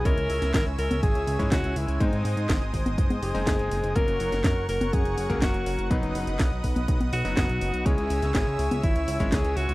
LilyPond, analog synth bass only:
\new Staff \with { instrumentName = "Analog synth bass" } { \clef bass \time 4/4 \key cis \dorian \tempo 4 = 123 cis,16 cis,16 cis,16 cis,16 gis,,16 cis,16 cis,16 cis,16 gis,,16 cis,16 cis,16 gis,,16 cis,16 cis,16 cis,16 cis,16 | gis,16 gis,16 gis,16 gis,16 gis,,16 gis,,16 gis,,16 gis,,16 fis,,16 gis,16 fis,,16 fis,,16 fis,,16 fis,,16 fis,,16 fis,,16 | fis,,16 fis,,16 fis,,16 fis,,16 fis,16 fis,,16 fis,,16 fis,,16 fis,16 fis,,16 fis,,16 cis,16 fis,,16 fis,,16 fis,,16 fis,,16 | b,,16 fis,,16 fis,,16 fis,,16 b,,16 b,,16 b,,16 b,,16 b,,16 b,,16 b,,16 fis,,16 fis,,16 b,,16 fis,,16 b,,16 |
cis,16 cis,16 cis,16 cis,16 gis,,16 cis,16 cis,16 cis,16 gis,,16 cis,16 cis,16 gis,,16 cis,16 cis,16 cis,16 cis,16 | }